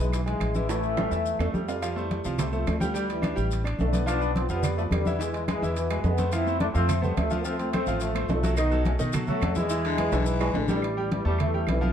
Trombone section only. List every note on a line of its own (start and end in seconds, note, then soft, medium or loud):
0.00 0.12 E3 medium
0.00 0.12 G#3 medium
0.13 0.19 B2 medium
0.13 0.20 E3 medium
0.28 0.67 E3 medium
0.28 0.67 G#3 loud
0.69 1.50 E3 medium
0.69 1.39 A3 loud
1.40 1.66 F3 medium
1.40 1.66 A3 medium
1.68 2.08 C3 medium
1.68 1.94 G3 medium
1.97 2.36 E3 medium
1.97 2.36 G3 medium
2.38 2.46 C3 medium
2.38 2.44 G3 medium
2.52 2.78 F3 medium
2.52 2.78 A3 medium
2.80 2.94 D3 medium
2.80 2.93 F3 medium
2.94 3.08 D3 medium
2.94 3.07 G3 medium
3.08 3.62 E3 medium
3.08 3.61 G3 medium
3.78 4.06 D3 medium
3.78 4.05 A3 medium
4.06 4.34 B3 medium
4.06 4.33 D4 loud
4.33 4.49 F3 medium
4.33 4.47 C4 medium
4.49 4.79 G3 medium
4.49 4.77 B3 loud
4.77 4.85 F3 medium
4.77 4.83 A3 medium
4.90 5.19 D3 medium
4.90 5.17 G3 medium
5.18 5.34 E3 medium
5.18 5.31 G#3 medium
5.32 5.48 E3 medium
5.32 5.45 G#3 medium
5.47 5.74 E3 medium
5.47 5.73 G#3 loud
5.75 6.03 B2 medium
5.75 6.02 E3 medium
6.03 6.31 G#3 medium
6.03 6.30 B3 medium
6.32 6.62 C4 medium
6.32 6.60 E4 loud
6.60 6.68 A3 medium
6.60 6.66 D4 medium
6.74 7.02 A3 medium
6.74 7.00 C4 loud
7.02 7.18 G3 medium
7.02 7.17 B3 medium
7.16 7.44 F3 medium
7.16 7.43 A3 loud
7.44 7.58 A3 medium
7.44 7.56 C4 loud
7.58 7.72 A3 medium
7.58 7.71 C4 loud
7.73 7.99 A3 medium
7.73 7.99 C4 loud
8.00 8.28 F3 medium
8.00 8.27 A3 medium
8.29 8.56 F3 medium
8.29 8.55 A3 loud
8.57 8.84 B3 medium
8.57 8.83 D#4 loud
8.85 8.92 A3 medium
8.85 8.92 C#4 medium
9.27 9.54 F#3 medium
9.27 9.54 A3 loud
9.55 10.55 E3 medium
9.55 10.54 G#3 loud
10.69 11.09 E3 medium
10.69 11.08 G3 medium
11.11 11.25 E3 medium
11.11 11.24 G3 medium
11.25 11.39 E3 medium
11.25 11.38 G3 medium
11.40 11.66 E3 medium
11.40 11.66 A3 loud
11.69 11.93 C3 medium
11.69 11.93 E3 medium